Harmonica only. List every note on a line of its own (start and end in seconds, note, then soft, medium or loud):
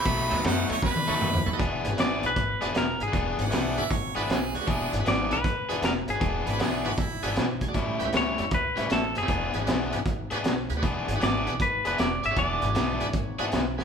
0.00 0.44 B5 loud
0.46 0.70 F#5 loud
0.71 0.83 C#5 loud
0.84 1.58 B4 loud
3.39 3.80 F#5 medium
3.78 3.92 E5 loud
3.91 4.18 C#5 medium
4.16 4.32 B4 medium
4.30 4.56 G#4 medium
4.55 4.70 F#4 medium
4.69 4.93 G#4 medium
6.47 6.60 B4 medium
6.61 6.88 G#4 medium
6.86 7.01 F#4 medium
6.99 7.36 E4 medium